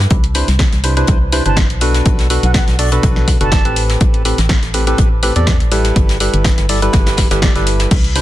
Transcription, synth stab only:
0.35 C3 D4 E4 B4 C5
0.84 C3 D4 E4 B4 C5
0.97 C3 D4 E4 B4 C5
1.33 C3 D4 E4 B4 C5
1.46 C3 D4 E4 B4 C5
1.81 B2 D4 F#4 A4 B4
2.30 B2 D4 F#4 A4 B4
2.79 B2 D4 F#4 A4 D5
2.92 B2 D4 F#4 A4 B4
3.41 B2 D4 F#4 A4 B4
3.65 A2 C4 G4 A4 B4
4.25 A2 C4 G4 A4 B4
4.74 A2 C4 G4 A4 B4
4.87 A2 C4 G4 A4 B4
5.23 A2 C4 G4 A4 B4
5.36 A2 C4 G4 A4 D5
5.72 G3 E4 G4 A4 B4
6.20 G3 E4 G4 A4 B4
6.69 G3 E4 G4 A4 D5
6.82 G3 E4 G4 A4 B4
7.31 G3 E4 G4 A4 B4
7.42 G3 E4 G4 A4 D5
7.56 G3 E4 G4 A4 B4
8.16 C3 D4 E4 B4 C5

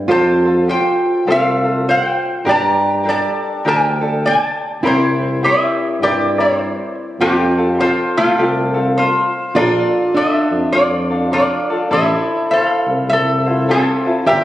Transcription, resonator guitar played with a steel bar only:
0.11 C5 A5
0.69 C5 G5
1.30 A4 F5
1.89 C5 G5
2.49 D5 A#5
3.09 D5 A5
3.68 A#4 G5
4.26 D5 A5
4.85 E4 C5
5.44 G4 E5
6.03 G4 D5
6.40 E4 C5
7.21 C4 G4
7.80 F4 C5
8.17 A3 F4
8.98 F4 C5
9.56 F4 D5
10.17 A4 E5
10.72 F4 D5
11.33 F4 D5
11.93 A4 E5
12.51 A4 E5
12.62 F5
13.09 A4 E5
13.71 C4 A4
14.27 G4 E5

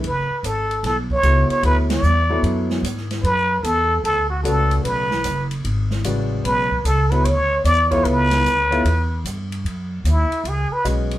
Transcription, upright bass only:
0.03 F#1
0.30 muted upright bass stroke
0.43 G#1
0.83 B1
1.23 C#2
1.49 muted upright bass stroke
1.63 D2
2.03 E2
2.43 F#2
2.83 G#2
3.23 F#2
3.63 E2
4.04 D2
4.44 C#2
4.84 B1
5.24 F#1
5.64 G#1
6.05 A1
6.45 B1
6.84 C#2
7.24 D2
7.64 E2
8.05 C#2
8.44 D2
8.85 E2
9.25 G2
9.64 F#2
10.04 D#2
10.44 C#2
10.70 muted upright bass stroke
10.84 B1

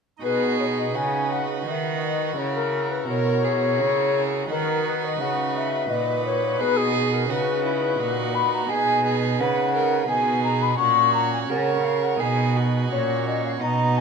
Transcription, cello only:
0.23 B2
0.95 C#3
1.66 D#3
2.37 C#3
3.09 B2
3.79 C#3
4.50 D#3
5.20 C#3
5.90 A#2
6.60 B2
7.29 C#3
7.99 A#2
8.70 B2
9.40 C#3
10.09 B2
10.79 A#2
11.50 C#3
12.20 B2
12.92 A#2
13.63 B2

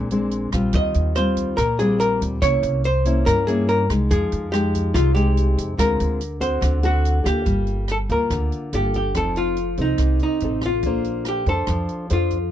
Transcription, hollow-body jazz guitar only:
0.75 D#5
1.16 C5
1.57 A#4
1.79 G#4
2.00 A#4
2.42 C#5
2.85 C5
3.26 A#4
3.47 G#4
3.69 A#4
4.11 G#4
4.52 G4
4.94 F4
5.15 G4
5.80 A#4
6.41 C5
6.85 F#4
7.26 G4
7.92 A4
8.12 A#4
8.75 G4
8.96 G4
9.17 A4
9.37 F4
9.82 D#4
10.23 D#4
10.66 F4
11.28 G4
11.49 A4
12.13 F4

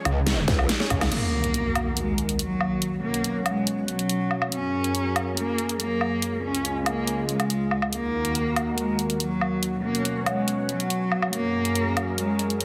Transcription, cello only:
1.12 A#3
1.97 G#3
2.39 F#3
3.03 A#3
3.46 G#3
3.88 F#3
4.52 C#4
5.37 A#3
5.80 A#3
6.44 C#4
6.86 A#3
7.29 G#3
7.93 A#3
8.77 G#3
9.20 F#3
9.84 A#3
10.27 G#3
10.69 F#3
11.33 A#3
12.18 G#3
12.61 F#3

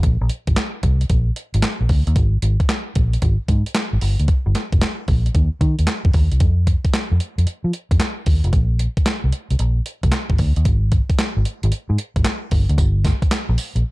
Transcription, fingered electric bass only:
0.03 A#1
0.21 A#1
0.48 G#1
0.83 C2
1.10 A#1
1.54 G#1
1.81 A#1
1.89 D2
2.07 D#2
2.16 G#1
2.42 G#1
2.96 A#1
3.22 G#1
3.49 G#2
3.93 G#1
4.02 G1
4.20 D2
4.46 G1
4.73 F1
5.08 A#1
5.35 D#2
5.61 D#3
5.79 D#2
6.05 F2
6.14 D#2
6.32 C2
6.41 F2
7.12 F2
7.38 F2
7.47 muted fingered electric bass stroke
7.64 F3
7.91 F2
8.27 D#2
8.44 F1
8.53 A#1
9.24 C2
9.51 C2
9.59 A#1
10.03 C2
10.30 G#1
10.39 D2
10.57 D#2
10.66 G#1
11.37 G#1
11.64 G#1
11.72 muted fingered electric bass stroke
11.90 G#2
12.16 G#1
12.52 G1
12.69 D2
12.78 G1
13.49 A#1
13.76 A#1

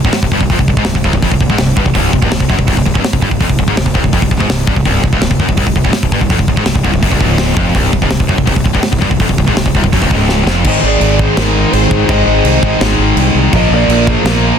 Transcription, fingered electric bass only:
0.04 C#1
0.13 muted fingered electric bass stroke
0.22 C1
0.31 G1
0.40 C1
0.50 F1
0.59 C1
0.68 C1
0.76 G#1
0.83 C1
0.95 C1
1.04 C1
1.13 C1
1.23 F1
1.31 C1
1.40 C1
1.49 G#1
1.59 C1
1.77 G1
1.85 C1
1.95 C1
2.13 C1
2.22 C#1
2.31 C1
2.40 C1
2.50 F#1
2.59 C1
2.68 C1
2.77 C1
2.86 C1
2.95 C#1
3.04 muted fingered electric bass stroke
3.13 C1
3.22 G1
3.31 C1
3.40 F1
3.49 C1
3.59 C1
3.68 G#1
3.77 C1
3.86 C1
3.95 C1
4.04 C1
4.13 F1
4.22 C1
4.31 C1
4.40 G#1
4.49 C1
4.68 G1
4.76 C1
4.85 C1
5.03 C1
5.12 C#1
5.21 C1
5.31 C1
5.39 F#1
5.48 C1
5.57 C1
5.67 C1
5.76 C1
5.84 C#1
5.94 muted fingered electric bass stroke
6.03 C1
6.11 G1
6.21 C1
6.30 F1
6.39 C1
6.48 C1
6.57 G#1
6.66 C1
6.75 C1
6.84 C1
6.94 C1
7.03 F#1
7.11 C1
7.20 C#1
7.56 F1
7.75 C1
7.93 C1
8.02 C#1
8.10 C1
8.19 C1
8.29 F#1
8.38 C1
8.47 C1
8.56 C1
8.65 C1
8.74 C#1
8.82 muted fingered electric bass stroke
8.92 C1
9.02 G1
9.11 C1
9.20 F1
9.29 C1
9.38 C1
9.48 G#1
9.57 C1
9.66 C1
9.75 C1
9.84 C1
9.93 F#1
10.02 C1
10.11 C#1
10.46 F1
10.65 G#1
10.83 G#1
11.01 G#1
11.37 G#1
11.73 G#1
11.91 G#1
12.09 G#1
12.27 G#1
12.44 C2
12.62 G#1
12.81 G#1
12.99 G#1
13.16 C2
13.35 C2
13.53 A#1
13.71 A#1
13.88 A#1
14.24 A#1

